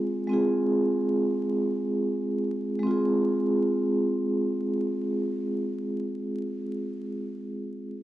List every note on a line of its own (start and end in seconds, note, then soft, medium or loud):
0.00 0.24 G#3 medium
0.00 0.25 C4 medium
0.00 0.26 F4 medium
0.00 0.27 G#4 medium
0.27 2.78 G#3 medium
0.27 2.81 C4 medium
0.27 2.82 F4 medium
0.33 2.83 G#4 medium
2.79 6.76 G#3 medium
2.79 6.80 C4 medium
2.87 6.84 F4 medium
2.87 6.88 G#4 medium